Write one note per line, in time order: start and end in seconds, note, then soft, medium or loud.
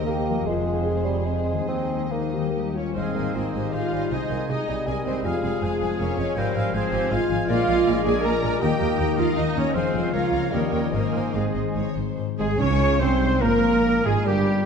0.00 0.44 D#2 soft
0.00 0.39 D#3 soft
0.00 0.42 A#3 soft
0.00 0.44 D#4 soft
0.00 0.43 G4 soft
0.00 0.46 G4 soft
0.00 0.43 A#4 soft
0.00 0.43 D#5 soft
0.06 0.48 A#3 medium
0.06 0.47 G4 medium
0.29 1.62 F3 soft
0.34 1.55 G#3 soft
0.38 1.67 C4 soft
0.43 1.07 G#3 medium
0.43 1.64 G#4 soft
0.43 1.65 G#4 soft
0.43 2.51 G#4 soft
0.47 1.67 F1 soft
0.47 1.67 F2 soft
0.47 0.86 F4 soft
0.47 1.66 C5 soft
0.87 1.15 G#4 soft
1.06 1.28 G3 medium
1.26 1.68 G#3 medium
1.26 1.69 C4 soft
1.51 2.35 D#3 soft
1.56 2.50 G#3 soft
1.56 2.44 D#4 soft
1.65 2.74 D#2 soft
1.65 2.13 C4 medium
1.65 2.07 D#4 soft
1.65 2.55 G#4 soft
1.65 2.72 D#5 soft
1.69 2.73 D#4 soft
2.12 2.76 A#3 soft
2.12 2.32 D#4 soft
2.33 2.89 D#3 soft
2.33 2.76 G4 soft
2.41 2.91 G3 soft
2.45 3.34 D#4 soft
2.50 2.96 A#4 soft
2.55 2.75 G4 soft
2.75 2.95 C#4 soft
2.75 2.96 F4 soft
2.75 2.95 C#5 soft
2.75 2.82 C#5 soft
2.95 3.04 G#1 soft
2.95 3.04 G#2 soft
2.95 4.13 G#2 soft
2.95 5.21 G#3 soft
2.95 3.17 G#3 soft
2.95 3.74 C4 soft
2.95 5.21 D#4 soft
2.95 3.33 G#4 soft
2.95 3.71 C5 soft
2.95 3.75 C5 soft
2.95 3.14 D#5 soft
2.95 3.36 F5 soft
2.95 3.15 G#5 soft
3.15 3.24 G#1 soft
3.15 3.24 G#2 soft
3.15 4.13 D#3 soft
3.15 3.75 A#3 soft
3.15 3.34 D#5 soft
3.15 3.33 G#5 soft
3.35 3.43 G#1 soft
3.35 3.43 G#2 soft
3.35 4.48 D#4 soft
3.35 3.44 F4 soft
3.35 3.75 D#5 soft
3.35 3.54 D#5 soft
3.35 3.54 G#5 soft
3.54 3.62 G#1 soft
3.54 3.62 G#2 soft
3.54 4.12 G4 soft
3.54 4.67 G#4 soft
3.54 3.72 D#5 soft
3.54 3.72 G#5 soft
3.73 3.81 G#1 soft
3.73 3.82 G#2 soft
3.73 3.95 G#3 soft
3.73 4.11 F4 medium
3.73 4.86 C5 soft
3.73 4.11 C5 soft
3.73 3.90 D#5 soft
3.73 4.11 F5 soft
3.73 4.10 F5 soft
3.73 3.90 G#5 soft
3.91 4.00 G#1 soft
3.91 4.00 G#2 soft
3.91 4.11 G3 soft
3.91 5.06 G#3 soft
3.91 4.08 D#5 soft
3.91 4.09 G#5 soft
4.10 4.18 C2 soft
4.10 4.19 C3 soft
4.10 5.27 C3 soft
4.10 4.32 G#3 soft
4.10 4.48 D#4 soft
4.10 4.49 G#4 soft
4.10 4.51 C5 soft
4.10 4.28 D#5 soft
4.10 4.48 D#5 soft
4.10 4.27 G#5 soft
4.28 4.37 C2 soft
4.28 4.37 C3 soft
4.28 4.51 A#3 soft
4.28 4.47 D#5 soft
4.28 4.48 G#5 soft
4.49 4.57 C2 soft
4.49 4.57 C3 soft
4.49 4.71 G#3 soft
4.49 4.87 D#4 soft
4.49 5.27 D#4 soft
4.49 4.89 G#4 soft
4.49 4.66 D#5 soft
4.49 4.87 D#5 soft
4.49 4.88 D#5 soft
4.49 4.66 G#5 soft
4.67 4.76 C2 soft
4.67 4.75 C3 soft
4.67 5.64 G3 soft
4.67 8.05 G#4 soft
4.67 4.85 D#5 soft
4.67 4.85 G#5 soft
4.86 4.95 C2 soft
4.86 4.95 C3 soft
4.86 4.95 G#4 medium
4.86 5.25 A#4 soft
4.86 5.81 C5 soft
4.86 5.06 D#5 soft
4.86 5.27 D#5 soft
4.86 5.06 G#5 soft
4.86 5.05 G#5 soft
4.86 4.95 G#5 medium
5.06 5.14 C2 soft
5.06 5.13 C3 soft
5.06 6.55 G#3 soft
5.06 5.25 C4 soft
5.06 5.26 C5 soft
5.06 5.15 C5 soft
5.06 5.25 D#5 soft
5.06 5.23 G#5 soft
5.23 5.32 F1 soft
5.23 5.32 F2 soft
5.23 6.39 F2 soft
5.23 7.48 F3 soft
5.23 6.00 G#3 medium
5.23 7.48 F4 soft
5.23 6.36 G#4 soft
5.23 5.98 G#4 medium
5.23 6.00 G#4 soft
5.23 5.42 F5 soft
5.23 5.64 F5 soft
5.23 5.42 G#5 soft
5.43 5.51 F1 soft
5.43 5.51 F2 soft
5.43 6.39 C3 soft
5.43 5.61 F5 soft
5.43 5.61 G#5 soft
5.62 5.70 F1 soft
5.62 5.70 F2 soft
5.62 6.02 F3 soft
5.62 5.99 F4 soft
5.62 5.80 F5 soft
5.62 5.79 G#5 soft
5.62 6.39 G#5 soft
5.80 5.88 F1 soft
5.80 5.88 F2 soft
5.80 6.92 C5 soft
5.80 5.98 F5 soft
5.80 5.98 G#5 soft
5.98 6.07 F1 medium
5.98 6.07 F2 soft
5.98 6.20 A#3 medium
5.98 6.37 C#4 medium
5.98 6.73 F4 soft
5.98 6.36 C#5 medium
5.98 6.37 C#5 medium
5.98 6.17 F5 soft
5.98 6.17 G#5 soft
6.17 6.26 F1 soft
6.17 6.25 F2 soft
6.17 7.30 F3 soft
6.17 6.37 G#3 soft
6.17 6.35 F5 soft
6.17 6.35 G#5 soft
6.36 6.44 G#1 soft
6.36 6.44 G#2 soft
6.36 7.51 G#2 medium
6.36 6.74 G3 medium
6.36 6.73 C4 medium
6.36 6.74 A#4 soft
6.36 6.73 C5 soft
6.36 6.74 C5 soft
6.36 6.55 F5 soft
6.36 6.57 G5 medium
6.36 6.54 G#5 soft
6.55 6.63 G#1 soft
6.55 6.63 G#2 medium
6.55 8.42 G#3 soft
6.55 6.72 F5 soft
6.55 6.75 F5 soft
6.55 6.72 G#5 soft
6.73 6.82 G#1 medium
6.73 6.82 G#2 medium
6.73 7.13 F3 soft
6.73 7.11 C4 medium
6.73 7.11 F4 soft
6.73 6.94 G#4 soft
6.73 7.14 C5 medium
6.73 7.11 C5 medium
6.73 6.91 F5 soft
6.73 6.91 G#5 soft
6.73 7.11 G#5 medium
6.92 7.00 G#1 medium
6.92 7.00 G#2 medium
6.92 7.11 G4 soft
6.92 7.51 C5 soft
6.92 7.11 F5 soft
6.92 7.11 G#5 soft
7.11 7.19 G#1 medium
7.11 7.19 G#2 medium
7.11 7.49 G#3 soft
7.11 7.30 F4 medium
7.11 7.48 F4 soft
7.11 8.63 F4 soft
7.11 7.29 F5 soft
7.11 7.31 F5 medium
7.11 7.29 G#5 soft
7.11 7.49 G#5 soft
7.30 7.38 G#1 medium
7.30 7.38 G#2 medium
7.30 7.67 F3 soft
7.30 7.49 F5 medium
7.30 7.48 G#5 soft
7.48 7.57 A#1 soft
7.48 7.56 A#2 medium
7.48 8.63 A#2 medium
7.48 8.58 G#3 medium
7.48 8.58 G#3 soft
7.48 8.58 D4 medium
7.48 8.01 F4 medium
7.48 9.59 A#4 medium
7.48 7.67 D5 soft
7.48 8.58 D5 medium
7.48 7.83 F5 medium
7.48 8.02 F5 medium
7.48 7.67 G#5 medium
7.68 7.75 A#1 medium
7.68 7.75 A#2 medium
7.68 8.63 F3 soft
7.68 7.86 D5 soft
7.68 7.86 G#5 soft
7.87 7.94 A#1 medium
7.87 7.95 A#2 medium
7.87 8.63 D4 soft
7.87 8.06 D5 medium
7.87 8.05 G#5 soft
8.05 8.13 A#1 medium
8.05 8.13 A#2 medium
8.05 8.24 G#4 medium
8.05 8.63 G#4 soft
8.05 8.24 D5 soft
8.05 8.24 G#5 medium
8.05 8.12 G#5 medium
8.05 8.23 G#5 soft
8.24 8.32 A#1 medium
8.24 8.32 A#2 medium
8.24 8.61 A#4 medium
8.24 8.98 A#4 soft
8.24 8.43 D5 soft
8.24 8.43 G#5 soft
8.24 8.61 A#5 medium
8.24 8.64 A#5 medium
8.43 8.50 A#1 medium
8.43 8.51 A#2 medium
8.43 8.63 G#3 soft
8.43 8.62 D5 medium
8.43 8.62 G#5 medium
8.60 8.69 D#2 medium
8.60 9.76 D#3 medium
8.60 9.57 A#3 medium
8.60 9.73 A#3 medium
8.60 9.57 D#4 medium
8.60 9.17 G4 medium
8.60 9.76 D#5 medium
8.60 8.79 D#5 medium
8.60 9.21 G5 medium
8.60 9.18 G5 medium
8.60 8.78 A#5 soft
8.80 8.88 D#2 medium
8.80 9.77 A#3 soft
8.80 8.98 D#5 soft
8.80 8.98 A#5 medium
8.99 9.07 D#2 medium
8.99 9.08 D#2 medium
8.99 9.36 A#4 soft
8.99 9.16 D#5 soft
8.99 9.16 A#5 soft
9.17 9.26 D#2 medium
9.17 9.37 F4 medium
9.17 9.36 D#5 soft
9.17 9.77 D#5 soft
9.17 9.39 F5 medium
9.17 9.37 F5 medium
9.17 9.36 A#5 soft
9.37 9.45 D#2 soft
9.37 9.45 D#2 medium
9.37 9.56 D#4 medium
9.37 9.76 A#4 soft
9.37 9.56 D#5 medium
9.37 9.54 D#5 soft
9.37 9.57 D#5 medium
9.37 9.55 A#5 soft
9.56 9.63 D#2 soft
9.56 9.64 D#2 medium
9.56 9.75 C#4 medium
9.56 9.76 D#4 soft
9.56 9.74 C#5 medium
9.56 9.76 C#5 medium
9.56 9.74 D#5 soft
9.56 9.74 A#5 soft
9.74 9.82 F1 soft
9.74 9.83 F2 medium
9.74 10.54 F3 soft
9.74 10.10 G#3 soft
9.74 10.12 G#3 soft
9.74 10.13 C4 medium
9.74 10.48 F4 soft
9.74 10.13 C5 medium
9.74 9.93 C5 soft
9.74 10.15 C5 soft
9.74 10.13 C5 soft
9.74 10.36 F5 soft
9.74 9.93 G#5 soft
9.94 10.01 F1 soft
9.94 10.02 F2 soft
9.94 10.15 C4 soft
9.94 10.31 F4 soft
9.94 10.13 C5 soft
9.94 10.13 G#5 soft
10.11 10.21 C#2 soft
10.11 10.21 C#2 medium
10.11 10.54 C#3 soft
10.11 10.50 A#3 medium
10.11 10.54 A#3 soft
10.11 10.51 F4 medium
10.11 10.93 C#5 soft
10.11 10.31 C#5 soft
10.11 10.53 F5 medium
10.11 10.52 F5 medium
10.11 10.31 A#5 soft
10.32 10.40 C#2 soft
10.32 10.71 C#4 soft
10.32 10.54 F4 soft
10.32 10.51 C#5 soft
10.32 10.52 A#5 soft
10.51 10.60 D#2 soft
10.51 10.95 D#3 soft
10.51 10.95 G3 soft
10.51 10.92 A#3 medium
10.51 10.90 C#4 medium
10.51 10.90 G4 soft
10.51 10.91 A#4 medium
10.51 10.92 A#4 soft
10.51 10.71 C#5 soft
10.51 11.95 D#5 soft
10.51 10.71 G5 soft
10.72 10.80 D#2 soft
10.72 10.81 D#2 soft
10.72 10.93 C#5 soft
10.72 10.93 G5 soft
10.92 11.01 G#1 soft
10.92 12.17 G#2 soft
10.92 11.01 G#2 soft
10.92 11.98 G#3 soft
10.92 11.34 A#3 medium
10.92 11.93 C4 soft
10.92 11.93 G#4 soft
10.92 11.34 A#4 soft
10.92 11.35 A#4 soft
10.92 11.13 C5 soft
10.92 11.96 C5 soft
10.92 11.14 G#5 soft
11.14 11.22 G#1 soft
11.14 11.22 G#2 soft
11.14 12.20 D#3 soft
11.14 11.35 C5 soft
11.14 11.35 G#5 soft
11.34 11.43 G#1 soft
11.34 11.43 G#2 soft
11.34 11.77 G#3 soft
11.34 13.44 C4 soft
11.34 11.76 G#4 soft
11.34 11.77 G#4 soft
11.34 11.42 F5 medium
11.55 11.64 G#1 soft
11.55 11.64 G#2 soft
11.55 12.80 G#4 soft
11.55 11.63 D#5 soft
11.75 11.84 G#1 soft
11.75 11.84 G#2 soft
11.75 12.59 D#4 soft
11.75 11.96 C#5 soft
11.97 12.05 G#1 soft
11.97 12.05 G#2 soft
11.97 12.39 G#3 soft
11.97 12.18 C5 soft
12.18 13.42 G#2 medium
12.38 12.59 G#1 medium
12.38 12.58 G#2 medium
12.38 12.48 G#3 medium
12.38 13.22 G#3 soft
12.38 12.49 G#3 medium
12.38 12.58 G#4 medium
12.38 12.47 G#4 medium
12.38 12.59 G#4 medium
12.38 12.48 G#4 medium
12.38 12.59 G#4 medium
12.38 12.58 G#5 medium
12.59 13.01 C#2 medium
12.59 13.01 C#3 medium
12.59 13.00 C#4 medium
12.59 13.01 C#4 medium
12.59 13.00 D#4 soft
12.59 13.00 C#5 medium
12.59 13.01 C#5 medium
12.59 13.01 C#6 medium
12.81 14.66 G#4 soft
13.00 13.42 C2 medium
13.00 13.42 C3 medium
13.00 13.44 C4 medium
13.00 13.42 C4 medium
13.00 13.44 D#4 soft
13.00 13.43 C5 medium
13.00 13.42 C5 medium
13.00 13.43 C5 medium
13.00 13.44 C5 medium
13.00 13.42 C5 medium
13.00 13.41 C6 medium
13.23 14.66 G#3 soft
13.41 14.05 A#1 medium
13.41 14.66 G#2 medium
13.41 14.04 A#2 medium
13.41 14.07 A#3 medium
13.41 14.04 A#3 medium
13.41 14.07 A#4 medium
13.41 14.03 A#4 medium
13.41 14.05 A#4 medium
13.41 14.07 A#4 medium
13.41 14.07 A#5 medium
13.64 14.66 A#3 soft
13.84 14.46 C#4 soft
14.04 14.13 G#1 medium
14.04 14.12 G#2 medium
14.04 14.14 G#3 medium
14.04 14.27 G#3 medium
14.04 14.66 F4 soft
14.04 14.26 G#4 medium
14.04 14.13 G#4 medium
14.04 14.28 G#4 medium
14.04 14.26 G#4 medium
14.04 14.26 G#5 medium
14.25 14.66 G1 medium
14.25 14.66 G2 medium
14.25 14.66 G3 medium
14.25 14.66 G4 medium
14.25 14.66 A#4 medium
14.25 14.66 G5 medium
14.47 14.66 C#4 soft